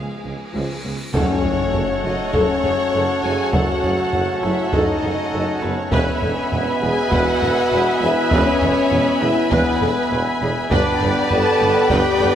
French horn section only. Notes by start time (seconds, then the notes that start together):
Already playing: B3 G#4
1.13 C#4
2.04 D#4
2.35 C#4
3.24 G#4
3.54 F#4
4.43 E4
4.71 D#4
5.61 B3
5.78 C#4
6.81 G#4
7.11 F#4
8.02 E4
8.32 C#4
9.21 E4
9.52 B3
10.71 D4
11.31 A4
11.89 G4